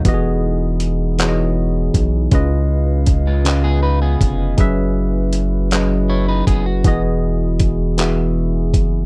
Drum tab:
HH |x-xx-x|x-xx-x|x-xx-x|x-xx-x|
CP |---x--|---x--|---x--|---x--|
BD |o----o|o-o--o|o----o|o-o--o|